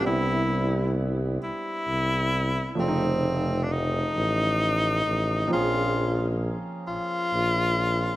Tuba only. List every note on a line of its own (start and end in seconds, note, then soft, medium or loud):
0.05 1.37 C2 medium
1.42 1.50 C2 soft
1.88 2.74 C2 medium
2.79 4.10 F1 medium
4.16 5.01 A1 medium
5.06 5.46 A1 medium
5.51 6.56 A#1 medium
6.88 6.97 A#1 soft
7.33 8.16 A#1 medium